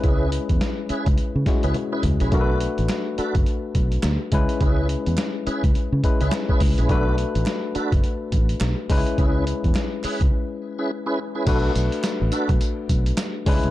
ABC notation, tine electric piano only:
X:1
M:4/4
L:1/8
Q:"Swing 16ths" 1/4=105
K:Bdor
V:1 name="Tine electric piano"
[G,CEB]4- [G,CEB] [G,CEF]3 | [A,DF^AB]6- [=A,DF^AB] [G,CEB]- | [G,CEB]4- [G,CEB] [G,CEB]3 | [A,DFB]6- [A,DFB] [G,C^DEB]- |
[G,C^DEB]6- [G,CDEB] z | [A,DFB]6- [A,DFB] [G,CDEB] |]